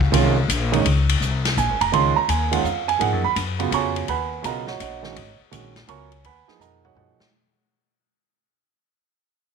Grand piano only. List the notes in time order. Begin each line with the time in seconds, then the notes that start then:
0.12 D#3 G#3 C#4 F4
0.72 D#3 G#3 C#4 D#4
1.58 G#5
1.81 A#5
1.92 D#3 G#3 C#4 F4 C6
2.16 A#5
2.29 G#5
2.51 D#3 G#3 C#4 F4 F#5
2.65 F5
2.88 G#5
2.99 F3 A#3 D#4 G#4 F#5
3.24 B5
3.59 C#3 B3 F4 F#4
3.74 C#5 G#5 A#5 C#6
4.09 B4 F#5 G#5 B5
4.42 C#3 F#3 B3 F4 D#5 F#5 A#5
4.46 A#4
4.68 F#4 C#5 D#5 F#5
4.82 F#4 C#5 D#5 F#5
5.03 D#3 G#3 C#4 F#4
5.51 D#3 G#3 C#4 F#4
5.88 F#3 B3 F4 A#4 C#5 G#5 A#5 C#6
6.25 B4 F#5 G#5 B5
6.48 F3 A#3 D#4 G#4
6.61 A#4 D#5 F#5 A#5
6.85 F#4 C#5 D#5 F#5
6.95 F3 A#3 D#4 F#4 G#4 C#5 D#5 F#5